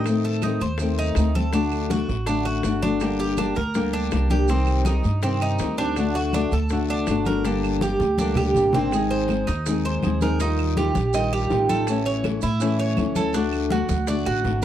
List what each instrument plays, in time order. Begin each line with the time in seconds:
Already playing: upright bass A2, cuban tres D#4
0.04 nylon-string guitar D#3 A3, high bongo, high conga, long guiro, claves, maracas
0.09 nylon-string guitar C4
0.24 cuban tres A4, high bongo, high conga, maracas
0.41 nylon-string guitar D#3 A3 C4, cuban tres D#4, high bongo, high conga, short guiro, claves, maracas
0.60 upright bass D#2, cuban tres C5, muted nylon-string guitar stroke, high conga, short guiro, maracas
0.78 nylon-string guitar D#3 A3 C4, high bongo, high conga, long guiro, maracas
0.98 cuban tres D#4, high conga, maracas
1.15 upright bass D2, nylon-string guitar D#3 A3 C4, high bongo, low bongo, high conga, short guiro, claves, maracas
1.34 nylon-string guitar A3 C4, cuban tres A4, high bongo, high conga, short guiro, maracas
1.52 nylon-string guitar D3 A3 D4 F#4, cuban tres D4, high bongo, high conga, long guiro, maracas
1.71 high bongo, high conga, claves, maracas
1.90 nylon-string guitar D3 A3 D4 F#4, cuban tres F#4, high bongo, high conga, short guiro, maracas
2.09 upright bass A1, muted nylon-string guitar stroke, high bongo, high conga, short guiro, maracas
2.26 nylon-string guitar D3 A3 D4 F#4, cuban tres D4, high bongo, high conga, long guiro, maracas
2.45 cuban tres F#4, high conga, claves, maracas
2.63 upright bass G1, nylon-string guitar D3 A3 D4 F#4, high bongo, low bongo, high conga, short guiro, maracas
2.82 nylon-string guitar A3 D4 F#4, cuban tres D4, high bongo, high conga, short guiro, maracas
3.00 nylon-string guitar D3 G3 A#3 D4 G4, high bongo, high conga, long guiro, claves, maracas
3.19 cuban tres G4, high bongo, high conga, maracas
3.37 nylon-string guitar G3 A#3 D4 G4, cuban tres D4, high bongo, high conga, short guiro, claves, maracas
3.55 upright bass D2, cuban tres A#4, muted nylon-string guitar stroke, high bongo, high conga, short guiro, maracas
3.74 nylon-string guitar D3 G3 A#3 D4 G4, high bongo, high conga, long guiro, maracas
3.93 cuban tres D4, high conga, maracas
4.11 upright bass C2, nylon-string guitar G3 A#3 D4 G4, high bongo, low bongo, high conga, short guiro, claves, maracas
4.30 nylon-string guitar G3 A#3 D4 G4, cuban tres G4, high bongo, high conga, short guiro, maracas
4.48 nylon-string guitar C3 D#3 G3 C4 G4, cuban tres C4, high bongo, high conga, long guiro, maracas
4.66 high bongo, high conga, claves, maracas
4.85 nylon-string guitar D#3 G3 C4 G4, cuban tres D#4, high bongo, high conga, short guiro, maracas
5.03 upright bass G2, muted nylon-string guitar stroke, high bongo, high conga, short guiro, maracas
5.22 nylon-string guitar C3 D#3 G3 C4 G4, cuban tres C4, high bongo, high conga, long guiro, maracas
5.41 cuban tres D#4, high conga, claves, maracas
5.58 upright bass D2, nylon-string guitar D#3 G3 C4 G4, high bongo, low bongo, high conga, short guiro, maracas
5.77 nylon-string guitar D#3 G3 C4 G4, cuban tres D4, high bongo, short guiro, maracas
5.96 nylon-string guitar D3 A3 D4 F#4, high bongo, high conga, long guiro, claves, maracas
6.15 cuban tres F#4, high bongo, high conga, maracas
6.33 nylon-string guitar D3 A3 D4 F#4, cuban tres D4, high bongo, high conga, short guiro, claves, maracas
6.51 upright bass D2, cuban tres A4, muted nylon-string guitar stroke, high bongo, high conga, short guiro, maracas
6.69 nylon-string guitar D3 A3 D4 F#4, high bongo, high conga, long guiro, maracas
6.88 cuban tres D4, high conga, maracas
7.07 upright bass G1, nylon-string guitar D3 A3 D4 F#4, high bongo, low bongo, high conga, short guiro, claves, maracas
7.25 nylon-string guitar A3 D4 F#4, cuban tres A#4, high bongo, high conga, short guiro, maracas
7.44 nylon-string guitar D3 G3 A#3 D4 G4, cuban tres D4, high bongo, high conga, long guiro, maracas
7.63 high bongo, high conga, claves, maracas
7.81 nylon-string guitar G3 A#3 D4 G4, cuban tres G4, high bongo, high conga, short guiro, maracas
7.99 upright bass D2, muted nylon-string guitar stroke, high bongo, high conga, short guiro, maracas
8.18 nylon-string guitar D3 G3 A#3 D4 G4, cuban tres D4, high conga, long guiro, maracas
8.36 cuban tres G4, high bongo, low conga, claves, maracas
8.54 upright bass G#1, nylon-string guitar G3 A#3 D4 G4, low conga, short guiro, maracas
8.73 nylon-string guitar G3 A#3 D4 G4, cuban tres C4, low bongo, low conga, short guiro, maracas
8.91 nylon-string guitar D#3 G#3 C4 D#4 G#4, high bongo, high conga, long guiro, claves, maracas
9.10 cuban tres C5, high bongo, high conga, maracas
9.28 nylon-string guitar G#3 C4 D#4 G#4, high bongo, high conga, short guiro, claves, maracas
9.47 upright bass D#2, cuban tres D#4, muted nylon-string guitar stroke, high bongo, high conga, short guiro, maracas
9.66 nylon-string guitar D#3 G#3 C4 D#4 G#4, high bongo, high conga, long guiro, maracas
9.85 cuban tres C5, high bongo, high conga, maracas
10.02 upright bass D#2, nylon-string guitar G#3 C4 D#4 G#4, high bongo, low bongo, high conga, short guiro, claves, maracas
10.21 nylon-string guitar G#3 C4 D#4 G#4, cuban tres A#4, high conga, short guiro, maracas
10.39 nylon-string guitar D#3 G3 D#4 F4, cuban tres D#4, high bongo, high conga, long guiro, maracas
10.58 high bongo, high conga, claves, maracas
10.77 nylon-string guitar D#3 G3 D#4 F4, cuban tres G4, high bongo, high conga, short guiro, maracas
10.95 upright bass A#1, muted nylon-string guitar stroke, high bongo, high conga, short guiro, maracas
11.13 nylon-string guitar D#3 G3 D#4 F4, cuban tres D#5, high bongo, high conga, long guiro, maracas
11.32 cuban tres G4, high bongo, high conga, claves, maracas
11.50 upright bass A1, nylon-string guitar D#3 G3 D#4 F4, high bongo, low bongo, high conga, short guiro, maracas
11.69 nylon-string guitar G3 D#4 F4, cuban tres A4, high conga, short guiro, maracas
11.87 nylon-string guitar E3 A3 C#4 E4, high bongo, high conga, long guiro, claves, maracas
12.06 cuban tres C#5, high bongo, high conga, maracas
12.24 nylon-string guitar E3 A3 C#4 E4, high bongo, high conga, short guiro, claves, maracas
12.41 upright bass A2, cuban tres E4, muted nylon-string guitar stroke, high bongo, high conga, short guiro, maracas
12.60 nylon-string guitar E3 A3 C#4 E4, high bongo, high conga, long guiro, maracas
12.79 cuban tres C#5, high bongo, high conga, maracas
12.97 upright bass D2, nylon-string guitar E3 A3 C#4 E4, high bongo, low bongo, high conga, short guiro, claves, maracas
13.15 nylon-string guitar A3 C#4 E4, cuban tres A4, high conga, short guiro, maracas
13.33 nylon-string guitar D3 A3 D4 F#4, cuban tres D4, high bongo, high conga, long guiro, maracas
13.53 high bongo, high conga, claves, maracas
13.70 nylon-string guitar D3 A3 D4 F#4, cuban tres F#4, high bongo, high conga, short guiro, maracas
13.89 upright bass D2, muted nylon-string guitar stroke, high bongo, high conga, short guiro, maracas
14.07 nylon-string guitar D3 A3 D4 F#4, cuban tres D5, high bongo, high conga, long guiro, maracas
14.26 upright bass A1, cuban tres F#4, high bongo, high conga, claves, maracas
14.44 upright bass G#1, nylon-string guitar D3 A3 D4 F#4, high bongo, low bongo, high conga, short guiro, maracas